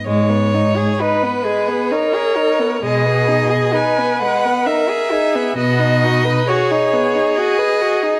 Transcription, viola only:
\new Staff \with { instrumentName = "Viola" } { \time 3/4 \key gis \minor \tempo 4 = 66 r4 b'8 gis'8 ais'4 | gis'4 b'4 ais'8 gis'8 | fis'8 dis'8 gis'2 | }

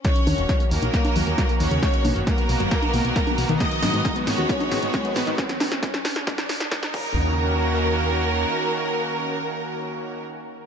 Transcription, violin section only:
\new Staff \with { instrumentName = "Violin section" } { \time 4/4 \key ees \minor \tempo 4 = 135 <des' des''>4. <bes bes'>2 <des' des''>8~ | <des' des''>4 <ais ais'>2. | <ees' ees''>4. <des' des''>2 <ces' ces''>8 | r2. r8 bes'8~ |
bes'1~ | bes'1 | }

